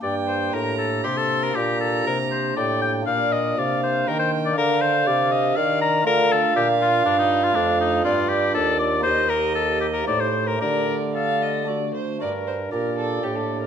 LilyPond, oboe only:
\new Staff \with { instrumentName = "Oboe" } { \time 3/4 \key g \minor \tempo 4 = 119 d''8 c''8 bes'8 a'8 g'16 a'8 bes'16 | g'8 a'8 bes'8 c''8 d''8 g''8 | f''8 ees''8 d''8 c''8 bes'16 c''8 d''16 | bes'8 c''8 d''8 ees''8 f''8 bes''8 |
bes'8 a'8 g'8 f'8 d'16 ees'8 f'16 | d'8 ees'8 f'8 g'8 a'8 d''8 | c''8 bes'8 a'8 g'16 bes'16 d''16 c''8 bes'16 | bes'8. r16 a'4 r4 |
bes'4 d''2 | }